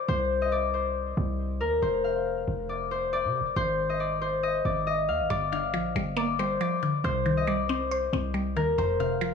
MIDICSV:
0, 0, Header, 1, 4, 480
1, 0, Start_track
1, 0, Tempo, 434783
1, 94, Time_signature, 4, 2, 24, 8
1, 10311, End_track
2, 0, Start_track
2, 0, Title_t, "Harp"
2, 0, Program_c, 0, 46
2, 0, Note_on_c, 0, 74, 82
2, 0, Note_on_c, 0, 77, 78
2, 92, Note_on_c, 0, 72, 111
2, 250, Note_off_c, 0, 77, 0
2, 461, Note_on_c, 0, 75, 83
2, 527, Note_off_c, 0, 74, 0
2, 572, Note_on_c, 0, 74, 87
2, 639, Note_off_c, 0, 75, 0
2, 810, Note_off_c, 0, 72, 0
2, 814, Note_on_c, 0, 72, 64
2, 1772, Note_on_c, 0, 70, 81
2, 2007, Note_off_c, 0, 72, 0
2, 2012, Note_on_c, 0, 72, 102
2, 2253, Note_on_c, 0, 77, 77
2, 2611, Note_off_c, 0, 74, 0
2, 2973, Note_on_c, 0, 74, 80
2, 3209, Note_off_c, 0, 72, 0
2, 3214, Note_on_c, 0, 72, 80
2, 3448, Note_off_c, 0, 74, 0
2, 3453, Note_on_c, 0, 74, 87
2, 3928, Note_off_c, 0, 72, 0
2, 3933, Note_on_c, 0, 72, 119
2, 4091, Note_off_c, 0, 77, 0
2, 4114, Note_off_c, 0, 70, 0
2, 4301, Note_on_c, 0, 75, 73
2, 4367, Note_off_c, 0, 74, 0
2, 4415, Note_on_c, 0, 74, 73
2, 4481, Note_off_c, 0, 75, 0
2, 4648, Note_off_c, 0, 72, 0
2, 4652, Note_on_c, 0, 72, 81
2, 4893, Note_on_c, 0, 75, 90
2, 4959, Note_off_c, 0, 74, 0
2, 5134, Note_on_c, 0, 74, 69
2, 5201, Note_off_c, 0, 75, 0
2, 5374, Note_on_c, 0, 75, 86
2, 5440, Note_off_c, 0, 74, 0
2, 5614, Note_on_c, 0, 77, 83
2, 5854, Note_on_c, 0, 74, 98
2, 5920, Note_off_c, 0, 75, 0
2, 6089, Note_off_c, 0, 77, 0
2, 6094, Note_on_c, 0, 77, 79
2, 6809, Note_off_c, 0, 74, 0
2, 6813, Note_on_c, 0, 74, 88
2, 6838, Note_off_c, 0, 72, 0
2, 7054, Note_on_c, 0, 72, 81
2, 7289, Note_off_c, 0, 74, 0
2, 7294, Note_on_c, 0, 74, 83
2, 7768, Note_off_c, 0, 72, 0
2, 7773, Note_on_c, 0, 72, 110
2, 7931, Note_off_c, 0, 77, 0
2, 8139, Note_on_c, 0, 75, 84
2, 8205, Note_off_c, 0, 74, 0
2, 8251, Note_on_c, 0, 74, 83
2, 8318, Note_off_c, 0, 75, 0
2, 8488, Note_off_c, 0, 72, 0
2, 8493, Note_on_c, 0, 72, 63
2, 9453, Note_on_c, 0, 70, 81
2, 9689, Note_off_c, 0, 72, 0
2, 9693, Note_on_c, 0, 72, 98
2, 9933, Note_on_c, 0, 77, 77
2, 10290, Note_off_c, 0, 74, 0
2, 10311, Note_off_c, 0, 70, 0
2, 10311, Note_off_c, 0, 72, 0
2, 10311, Note_off_c, 0, 77, 0
2, 10311, End_track
3, 0, Start_track
3, 0, Title_t, "Synth pluck"
3, 0, Program_c, 1, 84
3, 5854, Note_on_c, 1, 43, 98
3, 6101, Note_on_c, 1, 50, 79
3, 6334, Note_on_c, 1, 53, 100
3, 6578, Note_on_c, 1, 55, 89
3, 6807, Note_on_c, 1, 58, 99
3, 7046, Note_off_c, 1, 55, 0
3, 7054, Note_off_c, 1, 43, 0
3, 7059, Note_on_c, 1, 55, 84
3, 7282, Note_off_c, 1, 53, 0
3, 7295, Note_on_c, 1, 53, 95
3, 7297, Note_off_c, 1, 50, 0
3, 7537, Note_on_c, 1, 50, 79
3, 7771, Note_off_c, 1, 58, 0
3, 7774, Note_off_c, 1, 53, 0
3, 7775, Note_off_c, 1, 50, 0
3, 7776, Note_off_c, 1, 55, 0
3, 7778, Note_on_c, 1, 48, 99
3, 8011, Note_on_c, 1, 51, 84
3, 8251, Note_on_c, 1, 55, 92
3, 8493, Note_on_c, 1, 60, 95
3, 8737, Note_on_c, 1, 72, 94
3, 8966, Note_off_c, 1, 60, 0
3, 8976, Note_off_c, 1, 48, 0
3, 8979, Note_on_c, 1, 60, 88
3, 9195, Note_off_c, 1, 55, 0
3, 9209, Note_on_c, 1, 55, 85
3, 9213, Note_off_c, 1, 51, 0
3, 9457, Note_on_c, 1, 51, 80
3, 9691, Note_off_c, 1, 55, 0
3, 9695, Note_off_c, 1, 51, 0
3, 9696, Note_off_c, 1, 60, 0
3, 9696, Note_off_c, 1, 72, 0
3, 9698, Note_on_c, 1, 41, 102
3, 9937, Note_on_c, 1, 48, 81
3, 10171, Note_on_c, 1, 53, 91
3, 10311, Note_off_c, 1, 41, 0
3, 10311, Note_off_c, 1, 48, 0
3, 10311, Note_off_c, 1, 53, 0
3, 10311, End_track
4, 0, Start_track
4, 0, Title_t, "808-style bass"
4, 0, Program_c, 2, 38
4, 94, Note_on_c, 2, 36, 108
4, 1250, Note_off_c, 2, 36, 0
4, 1294, Note_on_c, 2, 36, 113
4, 1774, Note_on_c, 2, 39, 99
4, 1790, Note_off_c, 2, 36, 0
4, 2002, Note_off_c, 2, 39, 0
4, 2014, Note_on_c, 2, 29, 110
4, 2705, Note_off_c, 2, 29, 0
4, 2734, Note_on_c, 2, 29, 109
4, 3581, Note_on_c, 2, 48, 99
4, 3598, Note_off_c, 2, 29, 0
4, 3758, Note_on_c, 2, 29, 97
4, 3775, Note_off_c, 2, 48, 0
4, 3926, Note_off_c, 2, 29, 0
4, 3934, Note_on_c, 2, 32, 114
4, 5090, Note_off_c, 2, 32, 0
4, 5135, Note_on_c, 2, 32, 111
4, 5614, Note_on_c, 2, 39, 97
4, 5631, Note_off_c, 2, 32, 0
4, 5741, Note_on_c, 2, 32, 104
4, 5758, Note_off_c, 2, 39, 0
4, 5848, Note_off_c, 2, 32, 0
4, 5854, Note_on_c, 2, 31, 107
4, 6334, Note_on_c, 2, 34, 99
4, 6351, Note_off_c, 2, 31, 0
4, 6562, Note_off_c, 2, 34, 0
4, 6574, Note_on_c, 2, 31, 105
4, 7265, Note_off_c, 2, 31, 0
4, 7773, Note_on_c, 2, 36, 113
4, 8930, Note_off_c, 2, 36, 0
4, 8973, Note_on_c, 2, 36, 107
4, 9453, Note_on_c, 2, 39, 95
4, 9470, Note_off_c, 2, 36, 0
4, 9682, Note_off_c, 2, 39, 0
4, 9694, Note_on_c, 2, 29, 112
4, 10311, Note_off_c, 2, 29, 0
4, 10311, End_track
0, 0, End_of_file